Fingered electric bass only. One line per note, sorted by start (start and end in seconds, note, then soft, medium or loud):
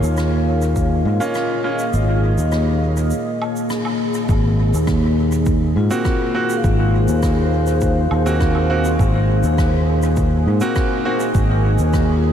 0.03 1.03 D#2 medium
1.05 1.18 G#2 medium
1.94 2.35 G#1 medium
2.38 3.11 D#2 medium
4.29 4.70 G#1 medium
4.73 5.73 D#2 medium
5.76 5.89 G#2 medium
6.64 7.06 G#1 loud
7.08 8.08 D#2 medium
8.11 8.97 D#2 medium
8.99 9.41 G#1 medium
9.44 10.44 D#2 medium
10.47 10.60 G#2 medium
11.35 11.76 G#1 loud
11.79 12.33 D#2 medium